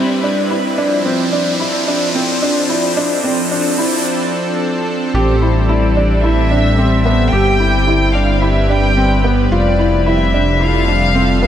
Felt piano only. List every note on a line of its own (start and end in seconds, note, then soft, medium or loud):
0.00 0.17 C4 medium
0.23 0.44 D4 medium
0.50 0.71 E4 medium
0.78 0.98 D4 loud
1.05 1.25 C4 medium
1.32 1.53 D4 medium
1.60 1.80 E4 medium
1.87 2.08 D4 medium
2.15 2.35 C4 medium
2.42 2.62 D4 medium
2.70 2.90 E4 medium
2.97 3.17 D4 loud
3.24 3.44 C4 medium
3.51 3.71 D4 medium
3.78 3.98 E4 medium
5.15 5.35 G4 loud
5.42 5.62 E4 medium
5.69 5.89 E4 medium
5.97 6.17 D4 medium
6.24 6.44 E4 medium
6.51 6.71 D4 medium
6.78 6.98 C4 medium
7.05 7.26 B3 medium
7.33 7.53 G4 loud
7.60 7.80 E4 medium
7.87 8.08 E4 medium
8.15 8.35 D4 medium
8.42 8.62 E4 medium
8.70 8.90 D4 medium
8.97 9.17 C4 medium
9.24 9.44 B3 medium
9.52 9.72 F4 loud
9.79 9.99 E4 medium
10.06 10.26 E4 medium
10.33 10.53 D4 medium
10.61 10.81 E4 medium
10.88 11.08 D4 medium
11.15 11.35 C4 loud
11.42 11.47 B3 medium